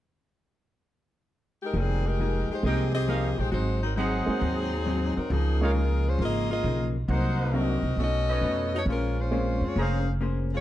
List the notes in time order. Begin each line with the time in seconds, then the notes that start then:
1.62 G#3 D#4 G4 A#4
1.74 F1 D#3 F3 G3 A#3 C4 D#4 G#4
2.06 G#3 D#4 G4 A#4
2.19 F3 A#3 D#4 G#4
2.49 G#3 D#4 G4 C5, muted upright bass stroke
2.63 C2 F3 G#3 A#3 C4 D#4 G4 G#4 A#4 D#5 G5
2.67 G#4
2.93 C4 G4 G#4 D#5
3.08 F3 A#3 D#4 G#4 A#4 F5
3.38 A#1 G#3 D#4 G4 C5
3.51 G#1 G#2 F#3 G#3 C4 D#4 F#4 C5
3.83 F#3 C4 D#4 A#4
3.96 G#2 F#3 C4 D#4 G#4 C5 F#5
4.26 G#3 A#3 C4 D#4 F#4, muted upright bass stroke
4.41 D#2 G#2 F#3 C4 D#4
4.86 G#2 F#3 C4 D#4
5.15 F#3 C4 D#4 A#4, muted upright bass stroke
5.30 C#2 C#3 F3 A#3 D#4 G#4
5.61 G#3 A#3 C#4 D#4 F4 A#4 C#5 F5
5.75 C#3 F3 A#3 D#4
6.06 G#3 C#4 F4 C5
6.18 G#1 C#3 F3 A#3 D#4 F4 G#4 D#5
6.51 A#3 F4 G#4 D#5
6.63 B1 C#3 F3 A#3 D#4
7.08 C2 C3 F#3 A#3 D#4 F#4 A#4 C5 F#5
7.53 C3 F#3 A#3 C4 D4 D#4 F#4 A#4 D#5
7.83 C2
7.97 B1 B2 A3 C#4 F#4 A4 D#5
8.01 C#4 D#4
8.28 D#4 B4 C#5 D#5
8.41 F2 B2 A3 C#4 D#4
8.74 A3 D#4 F#4 C#5
8.86 A#1 G#3 A#3 C#4 F4 G#4 A#4
8.90 C5
9.19 G#3 C#4 F4 C5
9.31 G#3 A#3 C4 C#4 F4 G#4 C5
9.61 F2 C4 F4
9.65 G#3 C#5
9.76 F1 A#3 C#4 G#4 C5 C#5 F5 A#5
10.21 A#3 C#4 G#4 C5
10.53 G#3 C4 F4 C#5